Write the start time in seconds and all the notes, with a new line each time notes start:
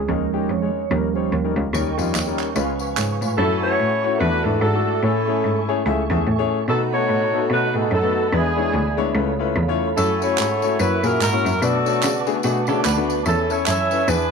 0.08 D#2 D#3 F3 G#3 C#4 D#4 A#4
0.33 G#3 C#4 D#4 G4
0.49 F2 C#5
0.62 G#3 C#4 D#4 C#5
0.90 D#2 D#3 F3 G3 C#4 D#4 A#4
1.15 G3 C#4 D#4 C5 C#5
1.33 D#2 A#4
1.44 G3 C#4 D#4 A#4
1.56 C#2
1.73 D#2 D#3 G3 A#3 C#4 D#4 A#4 D#5 G5 C#6, tambourine
1.98 F2 G3 C#4 D#4 F4, tambourine
2.15 D#2, clap, tambourine
2.27 G3 C#4 D#4 A#4
2.39 clap, tambourine
2.55 C#2 C#3 F3 G#3 B3 C#4 F4 B4 F5 G#5, tambourine
2.79 B4 F5, tambourine
2.97 G#2 G#4 C#5, clap, tambourine
3.21 A2 F4 B4, tambourine
3.37 F#2 A3 C#4 E4 F#4 A4 C#5 E5 F#5 C#6
3.62 A3 C#4 E4 F#4 A4 B4 C#5
3.80 A2
4.03 A3 C#4 E4 F#4 C#5
4.18 E2 E3 A3 D4 E4 F#4 B4 D6
4.43 G#2 A3 D4 E4 F#4 A4 B4
4.61 G#2 D4 F#4 A4
4.73 A3 D4 E4 F#4 A4
5.03 A2 A3 C#4 E4 G#4 A4 C#5 G#5 C#6
5.27 A3 C#4 E4 G#4 C#5
5.44 G#2
5.68 A3 C#4 E4 G#4 C#5
5.85 C#2 A3 C#4 E4 G#4 E5
6.10 E2 A3 C#4 E4 G#4 E5
6.27 A2
6.38 A3 C#4 E4 G#4 C#5
6.68 B2 A3 B3 D#4 F#4 A4 B4 D#5 F#5 B5
6.92 A3 B3 D#4 F#4 A4 C#5
7.09 A2
7.33 A3 B3 D#4 F#4 A4
7.50 B2 A3 B3 D#4 F#4 B4 C#5
7.74 A2 A3 B3 D#4 F#4 G#4 A4
7.91 F#2 D#4 F#4 A4
8.02 A3 B3 D#4 F#4 B4
8.32 E2 E3 G#3 B3 D4 E4 G#4 B4 D5 E5 B5
8.57 G#3 B3 D4 E4 C#5
8.74 D2
8.97 G#3 B3 D4 E4 C#5
9.14 C#2 C#3 A3 C#4 E4 F4 A4 B4 C#5 F5
9.39 A3 C#4 E4 F4 B4
9.56 E2
9.68 A3 C#4 E4 F4 C#5
9.96 F#2 A3 C#4 E4 F#4 A4 C#5 E5 F#5 C#6, tambourine
10.21 A3 C#4 E4 F#4 A4 C#5, tambourine
10.38 G#2, clap, tambourine
10.62 A3 C#4 E4 F#4 C#5, tambourine
10.79 F#2 A#3 C#4 E4 F#4 A#4 B4 C#5 C#6, tambourine
11.03 A#2 A#3 C#4 E4 F#4 G#4 A#4, tambourine
11.21 G#2 C#4 E4 A#4, clap, tambourine
11.32 A#3 C#4 E4 F#4 C#5
11.45 F#2, tambourine
11.61 B2 A3 B3 D4 F#4 A4 B4 D5 A5 D6, tambourine
11.85 A3 B3 D4 F#4 C#5, tambourine
12.03 C#3, clap, tambourine
12.26 A3 B3 D4 F#4 G#4, tambourine
12.43 B2 A3 B3 D4 F#4 G#4, tambourine
12.67 C#3 A3 B3 C#4 D4 F#4 A4 D5, tambourine
12.85 D2 D4 B4, clap, tambourine
12.96 A3 B3 D4 F#4 B4
13.10 tambourine
13.25 E2 E3 C#4 E4 A4 C#5 E5 E6, tambourine
13.49 C#4 E4 A4 C#5, tambourine
13.66 F#2 A4 C#5 E5, clap, tambourine
13.90 C#4 E4 B4, tambourine
14.08 E2 E3 B3 D4 E4 G#4 B4 D5 G#5 D6, tambourine